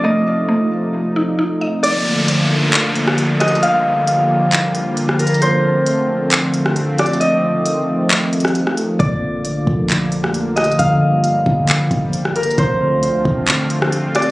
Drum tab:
HH |------------------------------------------------|x-----------x-----------x-----x-----x-----x-x-x-|x-----------x-----------x-----x-----x-----x-x-x-|x-----------x-----------x-----x-----x-----x-x-x-|
CP |------------------------------------------------|------------------------x-----------------------|------------------------x-----------------------|------------------------x-----------------------|
SD |------------------------------------------------|---------------------------------r--------r-----|---------------------------------------r--------|---------------------------------r--------r-----|
BD |------------------------------------------------|------------------------------------------------|------------------------------------------------|------------------------------------------------|

HH |x-----------x-----------x-----x-x-x-x-----x-----|x-----------x-----------x-----x-----x-----x-x-x-|x-----------x-----------x-----x-----x-----x-x-x-|x-----------x-----------x-----x-----x-----x-x---|
CP |------------------------x-----------------------|------------------------x-----------------------|------------------------x-----------------------|------------------------x-----------------------|
SD |---------------------------------r-----r--------|---------------------------------r--------r-----|---------------------------------------r--------|---------------------------------r--------r-----|
BD |------------------------------------------------|o-----------------o-----------------------------|------------------o-----------o-----------------|o-----------------o-----------------------------|